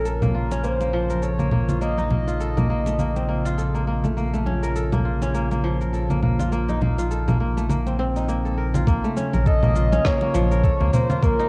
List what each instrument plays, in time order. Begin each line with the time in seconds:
Already playing: sub bass A#1, ambient pad C#3 F4, kora C#4 F4 A#4
0.05 kora A4, soft synth lead A#4, cabasa
0.22 kora A#3, high conga, low conga, cabasa
0.35 kora F4
0.51 kora C#4, muted conga, cabasa
0.63 kora A#3, soft synth lead C5, cabasa
0.81 kora A#3, muted conga, cabasa
0.93 kora F3
1.10 kora A#4, high conga, cabasa
1.23 kora A4, soft synth lead C#5, cabasa
1.39 kora A#3, low conga, cabasa
1.52 kora A#3, high conga, low conga
1.69 kora F4, low conga, cabasa
1.81 kora A#3, soft synth lead D#5, cabasa
1.98 kora D#4, high conga, cabasa
2.10 kora A#3, high conga, low conga
2.27 kora F4, cabasa
2.40 kora A4, cabasa
2.57 kora A#3, high conga, low conga, cabasa
2.70 kora A#3
2.86 kora A3, muted conga, cabasa
2.99 kora A#3, low conga, cabasa
3.16 kora C4, muted conga, cabasa
3.29 kora A#3
3.45 kora F4, cabasa
3.58 kora A4, cabasa
3.74 kora A#3, cabasa
3.87 kora A#3
4.04 kora A3, low conga, cabasa
4.17 kora A#3, cabasa
4.33 kora A3, high conga, cabasa
4.46 kora C#4, high conga
4.63 kora A#4, cabasa
4.75 kora A4, cabasa
4.92 kora A#3, high conga, low conga, cabasa
5.05 kora F4
5.22 kora C#4, muted conga, cabasa
5.34 kora A#3, cabasa
5.51 kora A#3, muted conga, cabasa
5.64 kora F3
5.81 kora A#4, high conga, cabasa
5.93 kora A4, cabasa
6.10 kora A#3, low conga, cabasa
6.23 kora A#3, high conga, low conga
6.39 kora F4, low conga, cabasa
6.52 kora A#3, cabasa
6.69 kora D#4, high conga, cabasa
6.81 kora A#3, high conga, low conga
6.98 kora F4, cabasa
7.11 kora A4, cabasa
7.28 kora A#3, high conga, low conga, cabasa
7.40 kora A#3
7.57 kora A3, muted conga, cabasa
7.69 kora A#3, low conga, cabasa
7.86 kora C4, muted conga, cabasa
7.99 kora C4
8.16 kora D#4, cabasa
8.29 kora A#3, cabasa
8.45 kora A4, cabasa
8.58 kora A#4
8.74 kora F4, low conga, cabasa
8.87 sub bass A#1, ambient pad C#3 F4 C#5, kora A#3, kick, cabasa
9.04 kora A3, cabasa
9.17 kora C#4, high conga, cabasa
9.33 sub bass A#1, kora A#4, high conga, cabasa
9.46 kora A4, soft synth lead D#5, kick, cabasa
9.63 kora A#3, low conga, cabasa
9.76 kora F4, cabasa
9.92 kora C#4, muted conga, high conga, cabasa
10.05 kora A#3, soft synth lead C#5, kick, cross-stick, cabasa
10.21 kora A#3, muted conga
10.34 sub bass A#1, kora F3, high conga, cabasa
10.51 kora A#4, cabasa
10.64 kora A4, kick, cabasa
10.80 sub bass C#2, kora A#3, low conga
10.93 kora A#3, soft synth lead C5, low conga, cabasa
11.10 kora F4, low conga, cabasa
11.22 sub bass A#1, kora A#3, soft synth lead A#4, kick, cabasa
11.39 kora D#4, cabasa